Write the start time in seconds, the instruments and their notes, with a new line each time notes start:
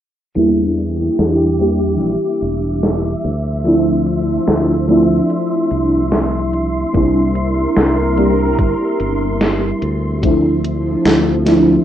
0.35 fingered electric bass E2, fm electric piano E3 G3 A#3 D4 E4, string machine G4 E5 D6, closed hi-hat
0.78 closed hi-hat
1.19 fingered electric bass E2, snare, closed hi-hat
1.59 fm electric piano E3 G3 A#3 D4 G4, closed hi-hat
2.01 fingered electric bass A#1, closed hi-hat
2.42 fingered electric bass E1, closed hi-hat
2.83 snare, closed hi-hat
3.24 fingered electric bass D2, string machine F3 C6, closed hi-hat
3.64 fm electric piano F3 A3 C4 D4 E4, closed hi-hat
4.07 closed hi-hat
4.48 fingered electric bass D2, snare, closed hi-hat
4.88 fm electric piano F3 A3 C4 D4 E4, closed hi-hat
5.30 closed hi-hat
5.71 fingered electric bass C2, closed hi-hat
6.12 snare, closed hi-hat
6.53 closed hi-hat
6.93 fingered electric bass C2, fm electric piano G3 A#3 C4 D4 E4, string machine A#4, kick, closed hi-hat
7.35 closed hi-hat
7.77 fingered electric bass C2, snare, closed hi-hat
8.17 fm electric piano G3 A#3 C4 D4 G4, closed hi-hat
8.59 fingered electric bass G1, kick, closed hi-hat
9.00 fingered electric bass G1, closed hi-hat
9.41 snare, closed hi-hat
9.82 fingered electric bass D2, closed hi-hat
10.22 fm electric piano F3 A3 C4 D4 E4, string machine F3, kick, closed hi-hat
10.64 closed hi-hat
11.05 fingered electric bass D2, snare, closed hi-hat
11.45 fm electric piano F3 A3 C4 D4 E4, snare, closed hi-hat